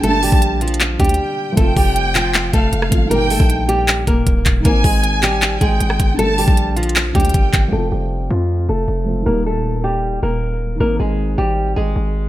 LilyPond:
<<
  \new Staff \with { instrumentName = "Violin section" } { \time 4/4 \key f \mixolydian \tempo 4 = 156 a''4 r4. g''4. | g''2~ g''8 f''4. | g''4 r2. | aes''2~ aes''8 g''4. |
a''4 r4. g''4. | r1 | r1 | r1 | }
  \new Staff \with { instrumentName = "Nylon-string guitar" } { \time 4/4 \key f \mixolydian <a a'>8 <g g'>4 <f f'>4 <g g'>4. | <a a'>8 <g g'>4 <f f'>4 <a a'>4. | <bes bes'>8 <a a'>4 <g g'>4 <bes bes'>4. | <bes bes'>8 <aes aes'>4 <g g'>4 <aes aes'>4. |
<a a'>8 <g g'>4 <f f'>4 <g g'>4. | <a a'>8 <g g'>4 <f f'>4 <a a'>4. | <bes bes'>8 <a a'>4 <g g'>4 <bes bes'>4. | <bes bes'>8 <aes aes'>4 <g g'>4 <aes aes'>4. | }
  \new Staff \with { instrumentName = "Felt piano" } { \time 4/4 \key f \mixolydian <d g bes d'>2~ <d g bes d'>8 <d g bes d'>4. | <f a c' f'>2.~ <f a c' f'>8 <f a c' f'>8 | <bes, ees g ees'>1 | <ees c' ees'>1 |
<d g bes d'>2~ <d g bes d'>8 <d g bes d'>4. | <f a c' f'>2.~ <f a c' f'>8 <f a c' f'>8 | <bes, ees g ees'>1 | <ees c' ees'>1 | }
  \new Staff \with { instrumentName = "808-style bass" } { \clef bass \time 4/4 \key f \mixolydian g,,8. bes,,4.~ bes,,16 d,8 r4 | f,,8 f,,2 f,,8 f,,8 g,,8~ | g,,8. bes,,4.~ bes,,16 ees,,8 d,,8 ees,,8 | aes,,8 aes,,2 aes,,8 aes,,8 g,,8~ |
g,,8. bes,,4.~ bes,,16 d,8 g,,8 g,,8 | f,,8 f,,4 f,4 f,,8 f,,4 | ees,,2~ ees,,8 ees,,4 d,,16 ees,,16 | aes,,8 aes,,4 aes,,4 aes,,8 aes,,4 | }
  \new DrumStaff \with { instrumentName = "Drums" } \drummode { \time 4/4 hh8 hho16 bd16 \tuplet 3/2 { hh16 r16 r16 hh16 hh16 hh16 } <hc hh>8 <hh bd>32 hh32 hh32 hh32 r4 | <hh bd>8 <hho bd>8 hh8 <hc hh>8 <hc hh>8 <hh bd>8 hh16 ss16 <hh bd>8 | hh8 hho16 bd16 hh8 hh8 <hc hh>8 <hh bd>8 <hh bd>8 <hc hh bd>8 | <hh bd>8 <hho bd>8 hh8 <hc hh>8 <hc hh>8 <hh bd>8 hh16 ss16 <hh bd>8 |
hh8 hho16 bd16 \tuplet 3/2 { hh16 r16 r16 hh16 hh16 hh16 } <hc hh>8 <hh bd>32 hh32 hh32 hh32 <hh bd>8 <hc hh bd>8 | r4 r4 r4 r4 | r4 r4 r4 r4 | r4 r4 r4 r4 | }
>>